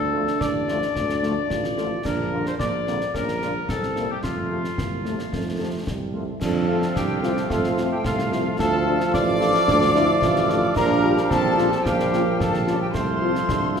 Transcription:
Already playing: D2 D4 A4
0.13 D3 F3 A3 F4
0.27 snare
0.40 A1 D5, concert bass drum, snare
0.68 D3 F3 A3 F4, snare
0.82 snare
0.96 D2, concert bass drum, snare
1.09 snare
1.23 D3 F3 A3 F4, snare
1.50 A1 F4, concert bass drum, snare
1.64 snare
1.78 D3 F3 A3 F4, snare
2.05 A#1 D4 A#4, concert bass drum, snare, crash
2.32 D3 G3 A#3 F4
2.46 C5, snare
2.59 A#1 A#3 D5, concert bass drum, snare
2.87 D3 G3 A#3 C4 F4, snare
3.01 snare
3.14 A#1 C#4 A#4, concert bass drum, snare
3.28 snare
3.41 C#3 G3 A#3 D4 F4, snare
3.68 C2 C4 A4, concert bass drum, snare
3.83 snare
3.96 C3 G3 A#3 E4, snare
4.10 G4
4.23 F2 A3 F4, concert bass drum, snare
4.50 C3 F3 A3 F4
4.64 snare
4.78 C2 A#3, concert bass drum, snare
5.05 C3 F3 A3 F4, snare
5.19 snare
5.32 F2 A3, concert bass drum, snare
5.59 C3 F3 A3 F4
5.87 C2 G3, concert bass drum, snare
6.14 C3 F3 A3 F4
6.29 A3
6.40 F2 F3 C4 D4 A4 F5 A5, concert bass drum, snare, crash
6.69 A3 C4 F4
6.82 snare
6.95 C2 D4 G4 G5, concert bass drum, snare
7.23 A3 C4 F4, snare
7.37 snare
7.50 F2 A3 F4 A4 F5, concert bass drum, snare
7.64 snare
7.77 A3 C4 F4, snare
7.91 G4 G5
8.04 C2 F4 A4 F5, concert bass drum, snare
8.19 snare
8.32 A3 C4 F4, snare
8.59 D2 F3 A3 F4 A4 F5 A5, concert bass drum, snare
8.86 A3 D4 F4
9.00 snare
9.13 A1 A4 D5 F5 D6, concert bass drum, snare
9.41 A3 D4 F4, snare
9.54 snare
9.68 D2 D4, concert bass drum, snare
9.81 snare
9.95 A3 D4 E4 F4, snare
10.22 A1 F4, concert bass drum, snare
10.36 snare
10.49 A3 D4 F4, snare
10.76 A#1 F3 G3 D4 G4 A#4 F5 A#5, concert bass drum, snare, crash
11.04 G3 D4 F4
11.17 snare
11.30 A#1 C4 A4 A5, concert bass drum, snare
11.57 G3 D4 F4, snare
11.72 snare
11.84 A#1 A#3 G4 F5 G5, concert bass drum, snare
11.99 snare
12.12 G3 A#3 C#4 F4, snare
12.39 A#1 A4 A5, concert bass drum, snare
12.54 snare
12.66 G3 C#4 F4, snare
12.80 G4 G5
12.93 C2 F3 A3 A4 C5 F5 C6, concert bass drum, snare
13.22 A3 C4 F4
13.35 snare
13.49 C2 D4, concert bass drum, snare
13.76 A3 C4 F4, snare

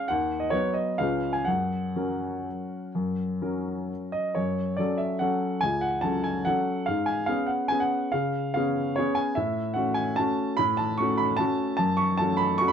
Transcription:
0.08 D#2 F#5
0.40 D#5
0.50 F#3 B3 B4 C#5
0.74 D#5
0.98 C#2 G#3 C#4 B4 F5
1.33 G#5
1.45 F#2 F#5
1.96 F#3 C#4 A#4
2.95 F#2
3.42 F#3 C#4 A#4
4.12 D#5
4.35 F#2 C#5
4.77 F#3 C#4 A4 D5
4.98 E5
5.19 F#3 C#4 A4 F#5
5.61 C#2 G#5
5.81 F#5
6.01 F#3 C#4 A4 A5
6.24 G#5
6.45 F#3 C#4 A4 F#5
6.86 G#2 F5
7.06 G#5
7.26 B3 C#4 G#4 F5
7.47 F#5
7.68 B3 C#4 G#4 G#5
7.80 F#5
8.12 C#3 F5
8.54 B3 C#4 G#4 F5
8.96 B3 C#4 G#4 C#5
9.15 G#5
9.35 A2 E5
9.74 A3 C#4 F#4 F#5
9.94 G#5
10.16 A3 C#4 F#4 A5
10.57 A2 B5
10.77 A5
10.98 A3 C#4 F#4 C#6
11.18 B5
11.37 A3 C#4 F#4 A5
11.77 F#2 A5
11.97 C#6
12.17 A3 C#4 F#4 A5
12.37 B5
12.58 A3 C#4 F#4 C#6
12.68 B5

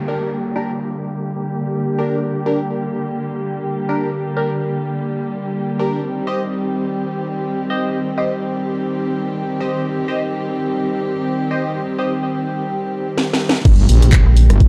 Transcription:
Already playing: D3 G3 A#3 G4, downlifter
0.08 D4 G4 A#4
0.56 D4 G4 A#4
1.98 D4 G4 A#4
2.46 D4 G4 A#4
3.89 D4 G4 A#4
4.37 D4 G4 A#4
5.79 D4 G4 A#4
6.03 D#3 C4 G4
6.27 G4 C5 D#5
7.70 G4 C5 D#5
8.18 G4 C5 D#5
9.60 G4 C5 D#5
10.08 G4 C5 D#5
11.51 G4 C5 D#5
11.98 G4 C5 D#5
13.18 snare
13.33 snare
13.49 snare
13.65 G1 D3 G3 A#3 G4, kick, closed hi-hat, crash, impact
13.89 A#1, open hi-hat
14.02 closed hi-hat
14.13 kick, clap, closed hi-hat
14.26 A#1
14.37 open hi-hat
14.50 G1, cross-stick, closed hi-hat
14.60 kick, closed hi-hat

